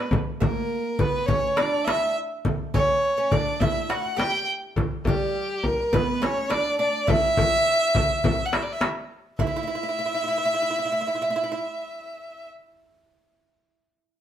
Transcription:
Already playing: violin B4
0.11 frame drum, darbuka dum
0.40 oud A#3, violin A#4, frame drum, darbuka dum
0.99 oud B3, violin B4, darbuka dum, frame drum
1.14 darbuka ka
1.26 oud C#4, violin C#5, frame drum, darbuka dum
1.56 oud D4, violin D5, darbuka tek, frame drum
1.73 darbuka ka
1.85 oud E4, violin E5, darbuka tek, frame drum
2.45 darbuka dum, frame drum
2.74 oud C#4, violin C#5, darbuka dum, frame drum
3.18 oud C#4
3.32 oud D4, violin D5, darbuka dum, frame drum
3.48 darbuka ka
3.60 oud E4, violin E5, frame drum, darbuka dum
3.90 oud F#4, violin F#5, darbuka tek
4.05 darbuka ka
4.17 oud G4, violin G5, darbuka tek, frame drum
4.76 frame drum, darbuka dum
5.05 oud G3, violin G4, frame drum, darbuka dum
5.63 violin A#4, frame drum
5.80 darbuka ka
5.93 oud B3, violin B4, frame drum, darbuka dum
6.22 oud C#4, violin C#5, darbuka tek, frame drum
6.37 darbuka ka
6.50 oud D4, violin D5, darbuka tek, frame drum
6.79 oud D4, violin D5
7.07 oud E4, violin E5, darbuka dum, frame drum
7.37 darbuka dum, frame drum
7.66 darbuka ka
7.95 darbuka dum, frame drum
8.10 darbuka ka
8.24 darbuka dum, frame drum
8.45 violin F#5
8.53 violin E5, darbuka tek, frame drum
8.63 violin D5
8.67 darbuka ka
8.73 violin E5
8.81 darbuka tek, frame drum
9.39 oud E4, violin E5, frame drum, darbuka dum
9.47 oud E4
9.56 oud E4
9.63 oud E4
9.68 oud E4
9.75 oud E4
9.83 oud E4
9.89 oud E4
9.99 oud E4
10.06 oud E4
10.14 oud E4
10.24 oud E4
10.28 oud E4
10.38 oud E4
10.45 oud E4
10.54 oud E4
10.62 oud E4
10.70 oud E4
10.79 oud E4
10.85 oud E4
10.92 oud E4
11.01 oud E4
11.07 oud E4
11.15 oud E4
11.22 oud E4
11.30 oud E4
11.36 oud E4
11.44 oud E4
11.52 oud E4

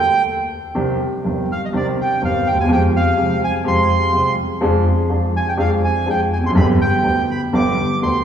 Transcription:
Already playing: bandoneon G5
0.75 grand piano C2 C3 D#3 C4 D4 G4
1.24 grand piano G1 G2 D#3 C4 D4 G4
1.52 bandoneon F5
1.65 bandoneon D#5
1.73 grand piano C2 C3 D#3 C4 D4 G4, bandoneon D5
2.01 bandoneon G5
2.22 grand piano G1 G2 D#3 C4 D4 G4, bandoneon F5
2.47 bandoneon G5
2.52 grand piano D2
2.58 grand piano D#2, bandoneon G#5
2.63 grand piano E2
2.68 grand piano F2 F3 G#3 C4 G4
2.73 bandoneon G5
2.96 bandoneon F5
3.17 grand piano C2 C3 F3 G#3 C4 G4
3.44 bandoneon G#5
3.64 grand piano F2 F3 G#3 C4 G4, bandoneon C6
4.12 grand piano C2 C3 F3 G#3 C4 G4
4.61 grand piano F2 F3 G#3 D4 G#4
5.10 grand piano F2 F3 G#3 D4 G#4
5.37 bandoneon G#5
5.49 bandoneon G5
5.57 grand piano F2 F3 G#3 D4 G#4, bandoneon F5
5.84 bandoneon G#5
6.06 grand piano F2 F3 G#3 D4 G#4
6.10 bandoneon G5
6.33 grand piano E2, bandoneon G#5
6.44 grand piano F2, bandoneon C6
6.49 grand piano F#2
6.55 grand piano G1 G2 D3 G3 B3 G4, bandoneon B5
6.81 bandoneon G5
7.03 grand piano D2 D3 G3 B3 G4
7.31 bandoneon B5
7.53 grand piano G1 G2 D3 G3 B3 G4, bandoneon D6
8.02 grand piano D2 D3 G3 B3 G4, bandoneon C6

